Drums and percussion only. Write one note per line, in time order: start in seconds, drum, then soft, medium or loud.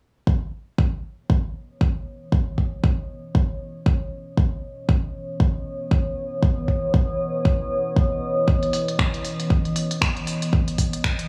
0.27 kick loud
0.78 kick loud
1.30 kick loud
1.81 kick loud
2.32 kick loud
2.58 kick medium
2.84 kick loud
3.35 kick loud
3.86 kick loud
4.37 kick loud
4.89 kick loud
5.40 kick loud
5.91 kick loud
6.43 kick loud
6.68 kick medium
6.94 kick loud
7.45 kick loud
7.96 kick loud
8.48 kick loud
8.63 closed hi-hat soft
8.73 open hi-hat loud
8.88 closed hi-hat medium
8.99 finger snap loud
8.99 kick loud
9.14 closed hi-hat soft
9.25 open hi-hat medium
9.40 closed hi-hat medium
9.50 kick loud
9.65 closed hi-hat soft
9.76 open hi-hat loud
9.91 closed hi-hat medium
10.02 finger snap loud
10.02 kick loud
10.17 closed hi-hat soft
10.27 open hi-hat medium
10.42 closed hi-hat medium
10.53 kick loud
10.68 closed hi-hat soft
10.78 kick medium
10.78 open hi-hat loud
10.93 closed hi-hat medium
11.04 finger snap loud
11.04 kick loud
11.19 closed hi-hat soft